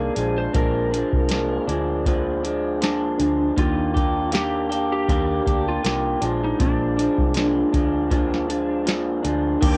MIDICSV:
0, 0, Header, 1, 6, 480
1, 0, Start_track
1, 0, Tempo, 756620
1, 346, Time_signature, 4, 2, 24, 8
1, 6199, End_track
2, 0, Start_track
2, 0, Title_t, "String machine"
2, 0, Program_c, 0, 50
2, 6104, Note_on_c, 0, 74, 79
2, 6105, Note_on_c, 0, 86, 86
2, 6106, Note_on_c, 0, 70, 81
2, 6106, Note_on_c, 0, 79, 74
2, 6199, Note_off_c, 0, 70, 0
2, 6199, Note_off_c, 0, 74, 0
2, 6199, Note_off_c, 0, 79, 0
2, 6199, Note_off_c, 0, 86, 0
2, 6199, End_track
3, 0, Start_track
3, 0, Title_t, "Electric slide guitar"
3, 0, Program_c, 1, 29
3, 0, Note_on_c, 1, 68, 82
3, 240, Note_on_c, 1, 72, 83
3, 252, Note_off_c, 1, 68, 0
3, 350, Note_off_c, 1, 72, 0
3, 352, Note_on_c, 1, 70, 74
3, 1044, Note_off_c, 1, 70, 0
3, 1800, Note_on_c, 1, 62, 77
3, 2274, Note_off_c, 1, 62, 0
3, 2277, Note_on_c, 1, 65, 87
3, 2751, Note_off_c, 1, 65, 0
3, 2753, Note_on_c, 1, 67, 93
3, 3116, Note_off_c, 1, 67, 0
3, 3123, Note_on_c, 1, 67, 91
3, 3603, Note_off_c, 1, 67, 0
3, 3606, Note_on_c, 1, 65, 88
3, 4085, Note_off_c, 1, 65, 0
3, 4088, Note_on_c, 1, 63, 74
3, 4193, Note_off_c, 1, 63, 0
3, 4195, Note_on_c, 1, 62, 74
3, 5605, Note_off_c, 1, 62, 0
3, 6199, End_track
4, 0, Start_track
4, 0, Title_t, "Clean electric guitar"
4, 0, Program_c, 2, 27
4, 0, Note_on_c, 2, 51, 57
4, 0, Note_on_c, 2, 58, 63
4, 0, Note_on_c, 2, 62, 59
4, 90, Note_off_c, 2, 62, 0
4, 98, Note_on_c, 2, 62, 49
4, 100, Note_off_c, 2, 51, 0
4, 105, Note_off_c, 2, 58, 0
4, 109, Note_on_c, 2, 56, 45
4, 119, Note_on_c, 2, 53, 37
4, 335, Note_off_c, 2, 53, 0
4, 338, Note_on_c, 2, 46, 74
4, 340, Note_off_c, 2, 56, 0
4, 342, Note_off_c, 2, 62, 0
4, 343, Note_on_c, 2, 53, 70
4, 347, Note_on_c, 2, 56, 76
4, 351, Note_on_c, 2, 62, 77
4, 571, Note_off_c, 2, 62, 0
4, 578, Note_on_c, 2, 62, 53
4, 582, Note_off_c, 2, 46, 0
4, 583, Note_off_c, 2, 56, 0
4, 585, Note_off_c, 2, 53, 0
4, 590, Note_on_c, 2, 56, 46
4, 599, Note_on_c, 2, 53, 46
4, 819, Note_on_c, 2, 46, 52
4, 821, Note_off_c, 2, 53, 0
4, 823, Note_off_c, 2, 62, 0
4, 829, Note_off_c, 2, 56, 0
4, 829, Note_on_c, 2, 53, 58
4, 835, Note_on_c, 2, 56, 60
4, 841, Note_on_c, 2, 62, 65
4, 1053, Note_off_c, 2, 62, 0
4, 1061, Note_on_c, 2, 62, 56
4, 1063, Note_off_c, 2, 46, 0
4, 1063, Note_off_c, 2, 56, 0
4, 1068, Note_off_c, 2, 53, 0
4, 1071, Note_on_c, 2, 56, 51
4, 1081, Note_on_c, 2, 53, 48
4, 1304, Note_off_c, 2, 53, 0
4, 1304, Note_off_c, 2, 62, 0
4, 1304, Note_on_c, 2, 46, 82
4, 1307, Note_off_c, 2, 56, 0
4, 1312, Note_on_c, 2, 53, 89
4, 1314, Note_on_c, 2, 56, 84
4, 1318, Note_on_c, 2, 62, 88
4, 1535, Note_off_c, 2, 62, 0
4, 1543, Note_on_c, 2, 62, 58
4, 1545, Note_off_c, 2, 56, 0
4, 1546, Note_off_c, 2, 46, 0
4, 1549, Note_off_c, 2, 53, 0
4, 1552, Note_on_c, 2, 56, 50
4, 1561, Note_on_c, 2, 53, 45
4, 1783, Note_off_c, 2, 53, 0
4, 1784, Note_on_c, 2, 46, 58
4, 1785, Note_off_c, 2, 62, 0
4, 1790, Note_off_c, 2, 56, 0
4, 1790, Note_on_c, 2, 53, 57
4, 1798, Note_on_c, 2, 56, 58
4, 1805, Note_on_c, 2, 62, 60
4, 2015, Note_off_c, 2, 62, 0
4, 2023, Note_on_c, 2, 62, 50
4, 2026, Note_off_c, 2, 46, 0
4, 2027, Note_off_c, 2, 56, 0
4, 2029, Note_off_c, 2, 53, 0
4, 2034, Note_on_c, 2, 56, 41
4, 2043, Note_on_c, 2, 53, 39
4, 2260, Note_off_c, 2, 53, 0
4, 2263, Note_off_c, 2, 62, 0
4, 2263, Note_on_c, 2, 51, 68
4, 2265, Note_off_c, 2, 56, 0
4, 2268, Note_on_c, 2, 58, 71
4, 2271, Note_on_c, 2, 62, 73
4, 2277, Note_on_c, 2, 67, 72
4, 2492, Note_off_c, 2, 67, 0
4, 2500, Note_on_c, 2, 67, 54
4, 2505, Note_off_c, 2, 51, 0
4, 2505, Note_off_c, 2, 62, 0
4, 2508, Note_off_c, 2, 58, 0
4, 2512, Note_on_c, 2, 62, 50
4, 2520, Note_on_c, 2, 58, 44
4, 2736, Note_off_c, 2, 58, 0
4, 2736, Note_on_c, 2, 51, 59
4, 2744, Note_off_c, 2, 67, 0
4, 2744, Note_on_c, 2, 58, 59
4, 2745, Note_off_c, 2, 62, 0
4, 2752, Note_on_c, 2, 62, 59
4, 2758, Note_on_c, 2, 67, 69
4, 2968, Note_off_c, 2, 67, 0
4, 2976, Note_on_c, 2, 67, 52
4, 2980, Note_off_c, 2, 62, 0
4, 2982, Note_off_c, 2, 51, 0
4, 2986, Note_off_c, 2, 58, 0
4, 2988, Note_on_c, 2, 62, 48
4, 2998, Note_on_c, 2, 58, 43
4, 3221, Note_off_c, 2, 58, 0
4, 3222, Note_off_c, 2, 67, 0
4, 3222, Note_on_c, 2, 51, 70
4, 3226, Note_off_c, 2, 62, 0
4, 3229, Note_on_c, 2, 58, 76
4, 3233, Note_on_c, 2, 62, 81
4, 3238, Note_on_c, 2, 67, 80
4, 3455, Note_off_c, 2, 67, 0
4, 3462, Note_on_c, 2, 67, 49
4, 3465, Note_off_c, 2, 51, 0
4, 3468, Note_off_c, 2, 58, 0
4, 3468, Note_off_c, 2, 62, 0
4, 3475, Note_on_c, 2, 62, 47
4, 3484, Note_on_c, 2, 58, 44
4, 3701, Note_off_c, 2, 58, 0
4, 3702, Note_on_c, 2, 51, 54
4, 3705, Note_off_c, 2, 67, 0
4, 3708, Note_off_c, 2, 62, 0
4, 3709, Note_on_c, 2, 58, 66
4, 3715, Note_on_c, 2, 62, 62
4, 3721, Note_on_c, 2, 67, 61
4, 3935, Note_off_c, 2, 62, 0
4, 3942, Note_on_c, 2, 62, 55
4, 3945, Note_off_c, 2, 51, 0
4, 3948, Note_off_c, 2, 58, 0
4, 3954, Note_off_c, 2, 67, 0
4, 3954, Note_on_c, 2, 56, 49
4, 3963, Note_on_c, 2, 53, 41
4, 4182, Note_off_c, 2, 53, 0
4, 4182, Note_on_c, 2, 46, 70
4, 4185, Note_off_c, 2, 56, 0
4, 4185, Note_off_c, 2, 62, 0
4, 4190, Note_on_c, 2, 53, 68
4, 4193, Note_on_c, 2, 56, 71
4, 4196, Note_on_c, 2, 62, 73
4, 4413, Note_off_c, 2, 62, 0
4, 4421, Note_on_c, 2, 62, 51
4, 4425, Note_off_c, 2, 46, 0
4, 4426, Note_off_c, 2, 56, 0
4, 4429, Note_off_c, 2, 53, 0
4, 4433, Note_on_c, 2, 56, 44
4, 4442, Note_on_c, 2, 53, 46
4, 4662, Note_off_c, 2, 53, 0
4, 4663, Note_on_c, 2, 46, 58
4, 4664, Note_off_c, 2, 62, 0
4, 4670, Note_off_c, 2, 56, 0
4, 4670, Note_on_c, 2, 53, 57
4, 4677, Note_on_c, 2, 56, 61
4, 4685, Note_on_c, 2, 62, 63
4, 4893, Note_off_c, 2, 62, 0
4, 4901, Note_on_c, 2, 62, 57
4, 4905, Note_off_c, 2, 46, 0
4, 4905, Note_off_c, 2, 56, 0
4, 4909, Note_off_c, 2, 53, 0
4, 4912, Note_on_c, 2, 56, 50
4, 4923, Note_on_c, 2, 53, 45
4, 5140, Note_off_c, 2, 53, 0
4, 5141, Note_on_c, 2, 46, 81
4, 5144, Note_off_c, 2, 62, 0
4, 5146, Note_off_c, 2, 56, 0
4, 5148, Note_on_c, 2, 53, 89
4, 5154, Note_on_c, 2, 56, 85
4, 5157, Note_on_c, 2, 62, 92
4, 5371, Note_off_c, 2, 62, 0
4, 5379, Note_on_c, 2, 62, 55
4, 5383, Note_off_c, 2, 56, 0
4, 5384, Note_off_c, 2, 46, 0
4, 5387, Note_off_c, 2, 53, 0
4, 5391, Note_on_c, 2, 56, 50
4, 5399, Note_on_c, 2, 53, 44
4, 5615, Note_on_c, 2, 46, 65
4, 5616, Note_off_c, 2, 53, 0
4, 5623, Note_off_c, 2, 56, 0
4, 5623, Note_off_c, 2, 62, 0
4, 5624, Note_on_c, 2, 53, 68
4, 5630, Note_on_c, 2, 56, 66
4, 5636, Note_on_c, 2, 62, 70
4, 5846, Note_off_c, 2, 62, 0
4, 5854, Note_on_c, 2, 62, 53
4, 5859, Note_off_c, 2, 56, 0
4, 5860, Note_off_c, 2, 46, 0
4, 5865, Note_off_c, 2, 53, 0
4, 5867, Note_on_c, 2, 56, 49
4, 5877, Note_on_c, 2, 53, 43
4, 6093, Note_off_c, 2, 53, 0
4, 6096, Note_on_c, 2, 51, 89
4, 6098, Note_off_c, 2, 62, 0
4, 6100, Note_off_c, 2, 56, 0
4, 6102, Note_on_c, 2, 58, 82
4, 6106, Note_on_c, 2, 62, 93
4, 6110, Note_on_c, 2, 67, 89
4, 6199, Note_off_c, 2, 51, 0
4, 6199, Note_off_c, 2, 58, 0
4, 6199, Note_off_c, 2, 62, 0
4, 6199, Note_off_c, 2, 67, 0
4, 6199, End_track
5, 0, Start_track
5, 0, Title_t, "Fingered electric bass"
5, 0, Program_c, 3, 33
5, 105, Note_on_c, 3, 34, 82
5, 297, Note_off_c, 3, 34, 0
5, 345, Note_on_c, 3, 34, 92
5, 644, Note_off_c, 3, 34, 0
5, 716, Note_on_c, 3, 36, 76
5, 996, Note_off_c, 3, 36, 0
5, 1064, Note_on_c, 3, 38, 81
5, 2000, Note_off_c, 3, 38, 0
5, 2027, Note_on_c, 3, 38, 75
5, 2220, Note_off_c, 3, 38, 0
5, 2267, Note_on_c, 3, 39, 97
5, 3202, Note_off_c, 3, 39, 0
5, 3226, Note_on_c, 3, 39, 86
5, 3419, Note_off_c, 3, 39, 0
5, 3468, Note_on_c, 3, 38, 86
5, 3660, Note_off_c, 3, 38, 0
5, 3706, Note_on_c, 3, 36, 80
5, 3899, Note_off_c, 3, 36, 0
5, 3945, Note_on_c, 3, 34, 81
5, 4138, Note_off_c, 3, 34, 0
5, 4187, Note_on_c, 3, 34, 93
5, 4485, Note_off_c, 3, 34, 0
5, 4557, Note_on_c, 3, 36, 74
5, 4836, Note_off_c, 3, 36, 0
5, 4909, Note_on_c, 3, 38, 81
5, 5842, Note_off_c, 3, 38, 0
5, 5866, Note_on_c, 3, 38, 74
5, 6058, Note_off_c, 3, 38, 0
5, 6105, Note_on_c, 3, 39, 108
5, 6199, Note_off_c, 3, 39, 0
5, 6199, End_track
6, 0, Start_track
6, 0, Title_t, "Drums"
6, 103, Note_on_c, 9, 42, 64
6, 166, Note_off_c, 9, 42, 0
6, 345, Note_on_c, 9, 36, 102
6, 345, Note_on_c, 9, 42, 83
6, 408, Note_off_c, 9, 36, 0
6, 408, Note_off_c, 9, 42, 0
6, 595, Note_on_c, 9, 42, 58
6, 658, Note_off_c, 9, 42, 0
6, 716, Note_on_c, 9, 36, 82
6, 779, Note_off_c, 9, 36, 0
6, 817, Note_on_c, 9, 42, 83
6, 834, Note_on_c, 9, 38, 94
6, 880, Note_off_c, 9, 42, 0
6, 897, Note_off_c, 9, 38, 0
6, 1072, Note_on_c, 9, 42, 51
6, 1135, Note_off_c, 9, 42, 0
6, 1304, Note_on_c, 9, 36, 84
6, 1309, Note_on_c, 9, 42, 77
6, 1368, Note_off_c, 9, 36, 0
6, 1373, Note_off_c, 9, 42, 0
6, 1552, Note_on_c, 9, 42, 62
6, 1616, Note_off_c, 9, 42, 0
6, 1789, Note_on_c, 9, 42, 77
6, 1800, Note_on_c, 9, 38, 108
6, 1853, Note_off_c, 9, 42, 0
6, 1863, Note_off_c, 9, 38, 0
6, 2028, Note_on_c, 9, 42, 61
6, 2092, Note_off_c, 9, 42, 0
6, 2267, Note_on_c, 9, 36, 98
6, 2269, Note_on_c, 9, 42, 87
6, 2331, Note_off_c, 9, 36, 0
6, 2332, Note_off_c, 9, 42, 0
6, 2512, Note_on_c, 9, 36, 89
6, 2516, Note_on_c, 9, 42, 57
6, 2576, Note_off_c, 9, 36, 0
6, 2580, Note_off_c, 9, 42, 0
6, 2741, Note_on_c, 9, 42, 83
6, 2758, Note_on_c, 9, 38, 87
6, 2804, Note_off_c, 9, 42, 0
6, 2822, Note_off_c, 9, 38, 0
6, 2994, Note_on_c, 9, 42, 55
6, 3057, Note_off_c, 9, 42, 0
6, 3226, Note_on_c, 9, 36, 87
6, 3231, Note_on_c, 9, 42, 74
6, 3289, Note_off_c, 9, 36, 0
6, 3294, Note_off_c, 9, 42, 0
6, 3467, Note_on_c, 9, 36, 74
6, 3472, Note_on_c, 9, 42, 64
6, 3531, Note_off_c, 9, 36, 0
6, 3535, Note_off_c, 9, 42, 0
6, 3708, Note_on_c, 9, 42, 76
6, 3718, Note_on_c, 9, 38, 101
6, 3771, Note_off_c, 9, 42, 0
6, 3782, Note_off_c, 9, 38, 0
6, 3945, Note_on_c, 9, 42, 61
6, 4008, Note_off_c, 9, 42, 0
6, 4187, Note_on_c, 9, 36, 104
6, 4187, Note_on_c, 9, 42, 88
6, 4250, Note_off_c, 9, 36, 0
6, 4251, Note_off_c, 9, 42, 0
6, 4435, Note_on_c, 9, 42, 58
6, 4498, Note_off_c, 9, 42, 0
6, 4557, Note_on_c, 9, 36, 79
6, 4621, Note_off_c, 9, 36, 0
6, 4659, Note_on_c, 9, 42, 77
6, 4676, Note_on_c, 9, 38, 92
6, 4722, Note_off_c, 9, 42, 0
6, 4739, Note_off_c, 9, 38, 0
6, 4908, Note_on_c, 9, 36, 83
6, 4910, Note_on_c, 9, 42, 56
6, 4972, Note_off_c, 9, 36, 0
6, 4974, Note_off_c, 9, 42, 0
6, 5144, Note_on_c, 9, 36, 87
6, 5147, Note_on_c, 9, 42, 76
6, 5207, Note_off_c, 9, 36, 0
6, 5211, Note_off_c, 9, 42, 0
6, 5289, Note_on_c, 9, 38, 30
6, 5353, Note_off_c, 9, 38, 0
6, 5391, Note_on_c, 9, 42, 65
6, 5455, Note_off_c, 9, 42, 0
6, 5626, Note_on_c, 9, 42, 75
6, 5637, Note_on_c, 9, 38, 107
6, 5690, Note_off_c, 9, 42, 0
6, 5700, Note_off_c, 9, 38, 0
6, 5866, Note_on_c, 9, 42, 62
6, 5929, Note_off_c, 9, 42, 0
6, 6105, Note_on_c, 9, 36, 105
6, 6106, Note_on_c, 9, 49, 92
6, 6107, Note_on_c, 9, 42, 98
6, 6169, Note_off_c, 9, 36, 0
6, 6169, Note_off_c, 9, 49, 0
6, 6170, Note_off_c, 9, 42, 0
6, 6199, End_track
0, 0, End_of_file